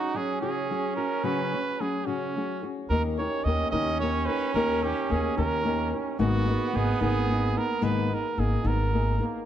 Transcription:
Already playing: C#4 D#4 F#4 G#4
0.14 F#3 C#4 F#4 G#4
0.41 C#3 F#3 C#4 F#4 G#4
0.70 F#3 C#4 F#4 G#4
0.96 C#4 F#4 G#4 A#4
1.24 C#3 F#3 C#4 F#4 G#4 B4
1.53 C#4 F#4 G#4
1.80 F#3 C#4 F#4 G#4
2.06 C#3 F#3 C#4 F#4 G#4
2.36 F#3 C#4 F#4 G#4
2.62 C#4 F#4 G#4
2.89 D#2 D#3 A#3 C#4 D#4 G4 A#4
3.18 D#4 G4 A#4 C#5
3.44 D#2 A#3 D#4 G4 A#4 D#5
3.71 D#2 D#3 A#3 D#4 G4 A#4 D#5
4.00 A#3 D#4 G4 A#4 C#5
4.26 G4 A#4 B4
4.30 D#4
4.54 D#2 D#3 A#3 D#4 G4 A#4
4.83 D#4 G4 A#4
5.09 D#2 A#3 D#4 G4 G#4 A#4
5.37 D#2 D#3 A#3 D#4 G4 A#4
5.65 A#3 D#4 G4 A#4
5.93 D#4 G4 A#4
6.19 G#1 G#2 D#3 A#3 B3 D#4 F#4 G#4
6.48 A#3 B3 D#4 G#4
6.73 G#1 A#3 B3 D#4 G#4
7.00 G#1 G#2 D#3 A#3 B3 D#4 G#4
7.29 A#3 B3 D#4 G#4
7.56 A#3 B3 D#4 G#4 A#4
7.81 G#1 G#2 D#3 A#3 B3 D#4 G#4 B4
8.12 A#3 B3 D#4 G#4 A#4
8.38 G#1 A#3 B3 D#4 G#4
8.64 G#1 G#2 D#3 A#3 B3 D#4 G#4 A#4
8.94 A#3 B3 D#4 G#4
9.20 A#3 B3 D#4 G#4

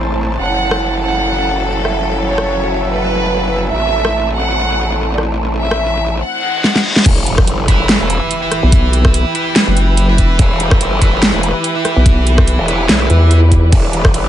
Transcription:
Already playing: A1 A3 C4 E4 C5 A5
0.39 F#1 F#3 C#4 E4 F#4 A4 F#5
0.58 E5
0.71 cross-stick
1.02 F#5
1.85 E5, cross-stick
2.27 C#5
2.38 cross-stick
2.89 B4
3.72 A1 A3 C4 E4 E5
3.98 C5
4.05 cross-stick
4.35 F#5
5.18 D5, cross-stick
5.60 E5
5.71 cross-stick
6.22 F#5, reverse cymbal
6.64 snare
6.75 snare
6.96 snare
7.06 E1 E3 E4 G4 B4, kick, closed hi-hat, crash, impact
7.18 G5
7.22 B4
7.26 closed hi-hat
7.38 kick, cross-stick
7.47 G1, closed hi-hat
7.68 E4 B4 E5, kick, closed hi-hat
7.80 G1
7.89 snare, closed hi-hat
8.01 E1
8.10 closed hi-hat
8.31 closed hi-hat
8.42 E4 B4 E5
8.52 cross-stick, closed hi-hat
8.63 B1
8.72 kick, closed hi-hat
8.93 closed hi-hat
9.05 kick, cross-stick
9.14 closed hi-hat
9.35 E4 B4 E5, closed hi-hat
9.56 snare, closed hi-hat
9.67 F#1
9.77 closed hi-hat
9.97 closed hi-hat
10.09 E4 B4 E5
10.17 F1, kick, closed hi-hat
10.39 E1, kick, closed hi-hat
10.60 closed hi-hat
10.71 kick, cross-stick
10.81 G1, closed hi-hat
11.01 E4 B4 E5, kick, closed hi-hat
11.13 G1
11.22 snare, closed hi-hat
11.34 E1
11.43 closed hi-hat
11.64 closed hi-hat
11.75 E4 B4 E5
11.85 cross-stick, closed hi-hat
11.96 B1
12.06 kick, closed hi-hat
12.27 closed hi-hat
12.38 kick, cross-stick
12.47 closed hi-hat
12.59 E1
12.68 E4 B4 E5, closed hi-hat
12.89 B1, snare, closed hi-hat
13.10 E2, closed hi-hat
13.31 closed hi-hat
13.43 A5
13.52 kick, closed hi-hat
13.72 E1 D5, kick, closed hi-hat, crash
13.93 closed hi-hat
14.05 kick, cross-stick
14.14 G1, closed hi-hat, crash

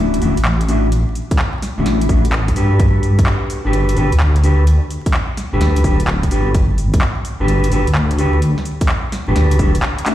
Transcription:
Already playing: D1 A3 C#4 D4 E4 F#4
0.14 closed hi-hat
0.21 D1 A3 C#4 D4 E4 F#4, open hi-hat
0.37 A1, closed hi-hat
0.45 clap
0.61 closed hi-hat
0.68 A3 C#4 D4 E4 F#4, open hi-hat
0.92 closed hi-hat
1.15 open hi-hat
1.31 kick, closed hi-hat
1.39 clap
1.62 snare, open hi-hat
1.78 D1 A3 C#4 D4 E4 F#4
1.86 A1, snare, closed hi-hat
2.01 closed hi-hat
2.09 A1 A3 C#4 D4 E4 F#4, kick, open hi-hat
2.25 closed hi-hat
2.33 clap
2.48 kick, closed hi-hat
2.56 G2 D4 F#4 G4 A4 B4, open hi-hat
2.80 kick, closed hi-hat
3.03 open hi-hat
3.19 kick, closed hi-hat
3.26 clap
3.50 open hi-hat
3.65 G1 D4 F#4 G4 A4 B4
3.73 closed hi-hat
3.89 closed hi-hat
3.96 G1 D4 F#4 G4 A4 B4, open hi-hat
4.12 D2, closed hi-hat
4.20 clap
4.36 closed hi-hat
4.43 D4 F#4 G4 A4 B4, open hi-hat
4.67 closed hi-hat
4.90 open hi-hat
5.06 kick, closed hi-hat
5.14 clap
5.37 snare, open hi-hat
5.53 G1 D4 F#4 G4 A4 B4
5.61 D2, snare, closed hi-hat
5.76 closed hi-hat
5.84 D1 D4 F#4 G4 A4 B4, kick, open hi-hat
6.00 closed hi-hat
6.08 clap
6.23 kick, closed hi-hat
6.31 G1 D4 F#4 G4 A4 B4, open hi-hat
6.54 kick, closed hi-hat
6.78 open hi-hat
6.94 kick, closed hi-hat
7.01 clap
7.25 open hi-hat
7.40 G1 D4 F#4 G4 A4 B4
7.48 closed hi-hat
7.64 closed hi-hat
7.71 G1 D4 F#4 G4 A4 B4, open hi-hat
7.87 D2, closed hi-hat
7.95 clap
8.11 closed hi-hat
8.18 D4 F#4 G4 A4 B4, open hi-hat
8.42 closed hi-hat
8.58 snare
8.65 open hi-hat
8.81 kick, closed hi-hat
8.89 clap
9.12 snare, open hi-hat
9.28 G1 D4 F#4 G4 A4 B4
9.36 D2, snare, closed hi-hat
9.51 closed hi-hat
9.59 D1 D4 F#4 G4 A4 B4, kick, open hi-hat
9.75 closed hi-hat
9.83 clap
9.98 closed hi-hat
10.06 A3 C#4 D4 E4 F#4, clap, open hi-hat

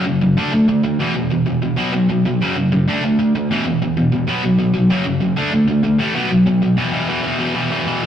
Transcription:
0.06 F#2 C#3
0.21 F#2 C#3
0.37 D3 A3 D4
0.52 D3 A3
0.68 D3 A3
0.84 D3 A3
0.99 E2 B2 E3
1.15 E2 B2
1.30 E2 B2
1.46 E2 B2
1.62 E2 B2
1.77 B2 F#3 B3
1.94 B2 F#3
2.09 B2 F#3
2.26 B2 F#3
2.41 F#2 C#3 F#3
2.57 F#2 C#3
2.72 F#2 C#3
2.88 D3 A3 D4
3.04 D3 A3
3.19 D3 A3
3.35 D3 A3
3.50 E2 B2 E3
3.66 E2 B2
3.82 E2 B2
3.97 E2 B2
4.12 E2 B2
4.28 B2 F#3 B3
4.43 B2 F#3
4.59 B2 F#3
4.74 B2 F#3
4.90 F#2 C#3 F#3
5.05 F#2 C#3
5.21 F#2 C#3
5.36 D3 A3 D4
5.52 D3 A3
5.68 D3 A3
5.83 D3 A3
5.98 A2 E3 A3
6.14 B2 F#3 B3
6.30 B2 F#3
6.46 B2 F#3
6.62 B2 F#3
6.77 E2 B2 E3
6.92 E2 B2 E3
7.08 E2 B2 E3
7.23 E2 B2 E3
7.39 E2 B2 E3
7.55 E2 B2 E3
7.71 E2 B2 E3
7.87 E2 B2 E3

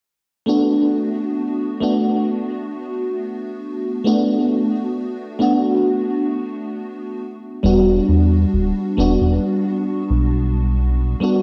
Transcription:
0.46 A3 B3 D4 F#4
1.80 A3 B3 D4 F#4
4.04 A3 B3 D4 F#4
5.39 A3 B3 D4 F#4
7.63 E1 G3 B3 D4 F#4
8.09 E2
8.54 D1
8.97 E1 G3 B3 D4 F#4
9.21 E1
10.10 B1
11.20 G3 B3 D4 F#4

